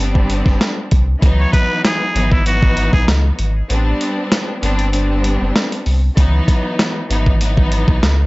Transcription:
Already playing: sub bass G1, string section G3 B3 C4
0.00 string section D4
0.15 kick
0.30 closed hi-hat
0.46 sub bass F#1, kick, snare
0.61 snare, closed hi-hat
0.91 sub bass C2, kick, closed hi-hat
1.20 sub bass C#2, string section E3 F#3 B3 D#4, kick, closed hi-hat
1.40 muted trumpet C#5
1.53 muted trumpet B4, kick, closed hi-hat
1.84 muted trumpet G#4, snare, closed hi-hat
2.12 sub bass G#1, string section E3 F#3 B3 D#4, closed hi-hat
2.32 muted trumpet E4, kick
2.44 string section E3 F#3 B3 D#4, muted trumpet F#4, closed hi-hat
2.63 kick
2.77 closed hi-hat
2.93 sub bass B1, muted trumpet G#4, kick
3.08 sub bass C#2, snare, closed hi-hat
3.39 sub bass G#1, closed hi-hat
3.69 sub bass A1, string section G3 B3 C4 D4, closed hi-hat
4.01 closed hi-hat
4.32 snare, closed hi-hat
4.60 sub bass G1, string section G3 B3 C4 D4, closed hi-hat
4.79 closed hi-hat
4.91 string section G3 B3 C4 D4, closed hi-hat
5.24 closed hi-hat
5.41 sub bass F#1
5.56 snare, closed hi-hat
5.72 closed hi-hat
5.86 sub bass C2, open hi-hat
6.15 sub bass C#2, string section E3 F#3 B3 D#4, kick, closed hi-hat
6.48 kick, closed hi-hat
6.79 snare, closed hi-hat
7.07 sub bass G#1, string section E3 F#3 B3 D#4, closed hi-hat
7.26 kick
7.39 string section E3 F#3 B3 D#4, closed hi-hat
7.57 kick
7.72 closed hi-hat
7.88 sub bass B1, kick
8.03 sub bass C#2, snare, closed hi-hat

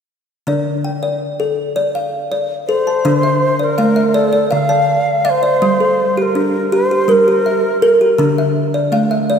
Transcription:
0.47 kalimba D3 D4 D5
0.84 kalimba G5
1.03 kalimba D5
1.40 kalimba A4
1.76 kalimba D5
1.95 kalimba F5
2.32 kalimba D5
2.67 kalimba A4, native american-style wooden flute C5
2.87 kalimba A5
3.05 kalimba D3 D4
3.23 kalimba E5
3.59 native american-style wooden flute A#4 C5, kalimba D5
3.78 kalimba A3 F5
3.96 kalimba E5
4.14 native american-style wooden flute A4, kalimba D5
4.33 kalimba D5
4.51 kalimba D3 F5, native american-style wooden flute F5
4.69 kalimba D5 A5
5.25 native american-style wooden flute D5, kalimba E5 F5
5.30 native american-style wooden flute C5
5.43 kalimba D5
5.62 kalimba G3
5.80 kalimba A4
6.17 kalimba G4, native american-style wooden flute C5
6.22 native american-style wooden flute A#4
6.35 kalimba D4
6.72 kalimba G4, native american-style wooden flute C5
6.91 kalimba G4
7.08 kalimba G3 A#4, native american-style wooden flute A#4
7.28 kalimba G4
7.46 kalimba E5
7.82 kalimba A4 A#4
8.01 kalimba G4
8.18 kalimba D3 D4
8.38 kalimba E5
8.74 kalimba D5
8.92 kalimba A3 F5
9.11 kalimba E5
9.30 kalimba D5

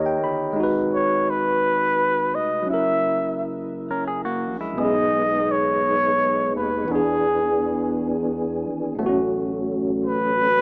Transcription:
Already playing: analog synth bass D#2, tine electric piano D#3 D#4 G4 C#5 D#5, flugelhorn A#4
0.06 tine electric piano G5
0.23 analog synth bass G1, tine electric piano B5
0.53 tine electric piano G#3 D#4
0.59 analog synth bass G#1, tine electric piano F#4
0.63 tine electric piano B4
0.94 flugelhorn C#5
1.30 flugelhorn B4
2.35 analog synth bass F1, flugelhorn D#5
2.62 tine electric piano F#3 C#4
2.70 analog synth bass F#1, tine electric piano E4 A#4, flugelhorn E5
3.91 clean electric guitar C#4 A#4
4.08 clean electric guitar G#4
4.25 clean electric guitar A#3 F#4
4.45 analog synth bass A#1
4.61 clean electric guitar G#3 E4
4.73 tine electric piano B2 B3
4.78 analog synth bass B1, tonewheel organ G#3 B3 D#4, tine electric piano C#4, flugelhorn D#5
4.85 tine electric piano D#4 G#4
5.51 flugelhorn C#5
6.56 analog synth bass D#2, flugelhorn B4
6.84 tine electric piano E3 B3, tonewheel organ G#4
6.88 analog synth bass E2, tonewheel organ E3 D4, tine electric piano D4, flugelhorn G#4
6.95 tine electric piano G#4
8.66 analog synth bass G#1
8.95 tine electric piano A2 A3, tonewheel organ A3
8.99 analog synth bass A1, tonewheel organ F#3 C#4, tine electric piano B3
9.06 tine electric piano C#4 F#4
10.06 flugelhorn B4

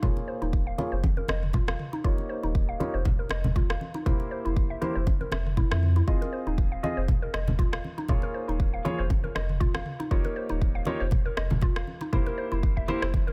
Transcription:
0.02 sub bass F1, felt piano A#3 F4 G#4 C#5, synth pluck F4, kick, low conga
0.17 muted conga
0.28 synth pluck C5
0.42 sub bass D#1, synth pluck D#4, muted conga
0.53 kick
0.67 synth pluck F5
0.78 felt piano A#3 F4 G#4 C#5, synth pluck F4, muted conga, high conga
0.92 sub bass F1, synth pluck C5
1.04 kick, muted conga, high conga
1.17 synth pluck A#4, high conga
1.28 sub bass F1, synth pluck D#5, cross-stick, muted conga, high conga
1.43 mid tom
1.53 synth pluck F4, kick, muted conga, low conga
1.67 sub bass F1, synth pluck F5, cross-stick, high conga
1.79 mid tom
1.93 synth pluck D#4, muted conga
2.04 sub bass F1, felt piano A#3 D#4 G4 C#5, synth pluck F4, kick
2.18 muted conga
2.29 synth pluck C5
2.43 sub bass D#1, synth pluck D#4, muted conga
2.55 kick
2.69 synth pluck F5
2.80 felt piano A#3 D#4 G4 C#5, synth pluck F4, muted conga, high conga
2.94 sub bass F1, synth pluck C5
3.05 kick, muted conga, low conga
3.19 synth pluck A#4
3.29 sub bass F1, synth pluck D#5, cross-stick, muted conga
3.44 mid tom, high conga, low conga
3.55 synth pluck F4, kick, muted conga, low conga
3.70 sub bass F1, synth pluck F5, cross-stick
3.81 high conga
3.94 synth pluck D#4, muted conga
4.06 sub bass F1, felt piano A#3 E4 G4 C5, synth pluck E4, kick, low conga
4.20 muted conga
4.31 synth pluck C5
4.45 sub bass F1, synth pluck E4, muted conga
4.57 kick
4.70 synth pluck E5
4.81 felt piano A#3 E4 G4 C5, synth pluck E4, muted conga, high conga
4.95 sub bass F1, synth pluck C5
5.07 kick, muted conga, high conga
5.21 synth pluck A#4, high conga
5.32 sub bass F1, synth pluck E5, cross-stick, muted conga, high conga
5.46 mid tom
5.57 synth pluck E4, kick, muted conga, low conga
5.71 sub bass F2, synth pluck E5, cross-stick, high conga
5.83 mid tom
5.96 synth pluck E4, muted conga
6.07 sub bass F1, felt piano C4 F4 G#4 D#5, synth pluck F4, kick
6.21 synth pluck A#4, muted conga
6.33 synth pluck C5
6.47 sub bass D#1, synth pluck D#4, muted conga
6.58 kick
6.72 synth pluck F5
6.83 felt piano C4 F4 G#4 D#5, synth pluck F4, muted conga, high conga
6.97 sub bass F1, synth pluck C5
7.08 kick, muted conga, low conga
7.22 synth pluck A#4
7.34 sub bass F1, synth pluck D#5, cross-stick, muted conga
7.48 mid tom, high conga, low conga
7.59 synth pluck F4, kick, muted conga, low conga
7.72 sub bass F1, synth pluck F5, cross-stick
7.84 high conga
7.98 synth pluck D#4, muted conga
8.08 sub bass F1, felt piano A#3 F4 G#4 C#5, synth pluck F4, kick, low conga
8.22 synth pluck A#4, muted conga
8.34 synth pluck C5
8.48 sub bass D#1, synth pluck D#4, muted conga
8.60 kick
8.74 synth pluck F5
8.85 felt piano A#3 F4 G#4 C#5, synth pluck F4, muted conga, high conga
8.98 sub bass F1, synth pluck C5
9.10 kick, muted conga, high conga
9.24 synth pluck A#4, high conga
9.35 sub bass F1, synth pluck D#5, cross-stick, muted conga, high conga
9.49 mid tom
9.60 synth pluck F4, kick, muted conga, low conga
9.74 sub bass F1, synth pluck F5, cross-stick, high conga
9.86 mid tom
10.00 synth pluck D#4, muted conga
10.11 sub bass F1, felt piano A#3 D#4 G4 C#5, synth pluck F4, kick
10.25 synth pluck A#4, muted conga
10.36 synth pluck C5
10.49 sub bass D#1, synth pluck D#4, muted conga
10.62 kick
10.75 synth pluck F5
10.85 felt piano A#3 D#4 G4 C#5, synth pluck F4, muted conga, high conga
11.00 sub bass F1, synth pluck C5
11.11 kick, muted conga, low conga
11.26 synth pluck A#4
11.37 sub bass F1, synth pluck D#5, cross-stick, muted conga
11.50 mid tom, high conga, low conga
11.61 synth pluck F4, kick, muted conga, low conga
11.76 sub bass F1, synth pluck F5, cross-stick
11.87 high conga
12.01 synth pluck D#4, muted conga
12.13 sub bass F1, felt piano A#3 E4 G4 C5, synth pluck E4, kick, low conga
12.26 synth pluck A#4, muted conga
12.38 synth pluck C5
12.52 sub bass F1, synth pluck E4, muted conga
12.63 kick
12.77 synth pluck E5, kick
12.88 felt piano A#3 E4 G4 C5, synth pluck E4, muted conga, high conga
13.02 sub bass F1, synth pluck C5, cross-stick
13.14 kick, muted conga, high conga
13.27 synth pluck A#4, high conga

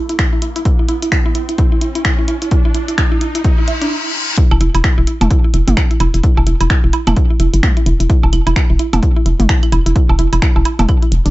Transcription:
Already playing: riser
0.09 synth arpeggio sound E4, closed hi-hat
0.19 synth arpeggio sound E4, finger snap, kick, closed hi-hat
0.33 synth arpeggio sound E4
0.42 synth arpeggio sound E4, closed hi-hat
0.56 synth arpeggio sound E4, closed hi-hat
0.65 synth arpeggio sound E4, kick, closed hi-hat
0.79 synth arpeggio sound E4
0.89 synth arpeggio sound E4, closed hi-hat
1.02 synth arpeggio sound E4, closed hi-hat
1.12 synth arpeggio sound E4, finger snap, kick, closed hi-hat
1.26 synth arpeggio sound E4
1.35 synth arpeggio sound E4, closed hi-hat
1.49 synth arpeggio sound E4, closed hi-hat
1.58 synth arpeggio sound E4, kick, closed hi-hat
1.72 synth arpeggio sound E4
1.81 synth arpeggio sound E4, closed hi-hat
1.95 synth arpeggio sound E4, closed hi-hat
2.05 synth arpeggio sound E4, finger snap, kick, closed hi-hat
2.19 synth arpeggio sound E4
2.28 synth arpeggio sound E4, closed hi-hat
2.42 synth arpeggio sound E4, closed hi-hat
2.51 synth arpeggio sound E4, kick, closed hi-hat
2.65 synth arpeggio sound E4
2.75 synth arpeggio sound E4, closed hi-hat
2.88 synth arpeggio sound E4, closed hi-hat
2.98 synth arpeggio sound E4, finger snap, kick, closed hi-hat
3.12 synth arpeggio sound E4
3.21 synth arpeggio sound E4, closed hi-hat
3.35 synth arpeggio sound E4, closed hi-hat
3.44 synth arpeggio sound E4, kick, closed hi-hat, reverse cymbal
3.58 synth arpeggio sound E4
3.68 synth arpeggio sound E5, closed hi-hat
3.82 synth arpeggio sound D4, closed hi-hat
4.37 synth arpeggio sound E4, kick, closed hi-hat
4.51 fm bass E1, synth arpeggio sound E4, claves, low woodblock
4.61 fm bass E1, synth arpeggio sound E4, closed hi-hat
4.75 fm bass E1, synth arpeggio sound E4, closed hi-hat, high woodblock
4.84 synth arpeggio sound E4, finger snap, kick, closed hi-hat
4.98 fm bass E1, synth arpeggio sound E4
5.07 synth arpeggio sound E4, closed hi-hat
5.21 fm bass E1, synth arpeggio sound E4, closed hi-hat, mid tom, low woodblock
5.31 synth arpeggio sound E4, kick, closed hi-hat
5.44 synth arpeggio sound E4
5.54 fm bass E1, synth arpeggio sound E4, closed hi-hat
5.68 fm bass F#1, synth arpeggio sound E4, closed hi-hat, mid tom
5.77 synth arpeggio sound E4, finger snap, kick, closed hi-hat, claves
5.91 synth arpeggio sound E4, closed hi-hat
6.00 fm bass E1, synth arpeggio sound E4, closed hi-hat, high woodblock
6.14 fm bass E1, synth arpeggio sound E4, closed hi-hat
6.23 synth arpeggio sound E4, kick, closed hi-hat
6.37 fm bass E1, synth arpeggio sound E4, low woodblock
6.47 fm bass E1, synth arpeggio sound E4, closed hi-hat
6.61 fm bass E1, synth arpeggio sound E4, closed hi-hat, high woodblock
6.70 synth arpeggio sound E4, finger snap, kick, closed hi-hat
6.84 fm bass E1, synth arpeggio sound E4
6.93 synth arpeggio sound E4, closed hi-hat, high woodblock
7.07 fm bass E1, synth arpeggio sound E4, closed hi-hat, mid tom, claves, low woodblock
7.16 synth arpeggio sound E4, kick, closed hi-hat
7.30 synth arpeggio sound E4
7.40 fm bass E1, synth arpeggio sound E4, closed hi-hat
7.54 fm bass F#1, synth arpeggio sound E4, closed hi-hat
7.63 synth arpeggio sound E4, finger snap, kick, closed hi-hat, mid tom
7.77 synth arpeggio sound E4, closed hi-hat
7.86 fm bass E1, synth arpeggio sound E4, closed hi-hat
8.00 fm bass E1, synth arpeggio sound E4, closed hi-hat
8.10 synth arpeggio sound E4, kick, closed hi-hat
8.23 fm bass E1, synth arpeggio sound E4, low woodblock
8.33 fm bass E1, synth arpeggio sound E4, closed hi-hat, claves
8.47 fm bass E1, synth arpeggio sound E4, closed hi-hat, high woodblock
8.56 synth arpeggio sound E4, finger snap, kick, closed hi-hat
8.70 fm bass E1, synth arpeggio sound E4
8.79 synth arpeggio sound E4, closed hi-hat
8.93 fm bass E1, synth arpeggio sound E4, closed hi-hat, mid tom, low woodblock
9.03 synth arpeggio sound E4, kick, closed hi-hat
9.16 synth arpeggio sound E4
9.26 fm bass E1, synth arpeggio sound E4, closed hi-hat
9.40 fm bass F#1, synth arpeggio sound E4, closed hi-hat, mid tom
9.49 synth arpeggio sound E4, finger snap, kick, closed hi-hat
9.63 synth arpeggio sound E4, closed hi-hat, claves
9.72 fm bass E1, synth arpeggio sound E4, closed hi-hat, high woodblock
9.86 fm bass E1, synth arpeggio sound E4, closed hi-hat
9.96 synth arpeggio sound E4, kick, closed hi-hat
10.09 fm bass E1, synth arpeggio sound E4, low woodblock
10.19 fm bass E1, synth arpeggio sound E4, closed hi-hat
10.33 fm bass E1, synth arpeggio sound E4, closed hi-hat, high woodblock
10.42 synth arpeggio sound E4, finger snap, kick, closed hi-hat
10.56 fm bass E1, synth arpeggio sound E4, low woodblock
10.65 synth arpeggio sound E4, closed hi-hat, high woodblock
10.79 fm bass E1, synth arpeggio sound E4, closed hi-hat, mid tom, low woodblock
10.89 synth arpeggio sound E4, kick, closed hi-hat, claves
11.02 synth arpeggio sound E4, closed hi-hat
11.12 fm bass E1, closed hi-hat
11.26 fm bass F#1, synth arpeggio sound D4, closed hi-hat

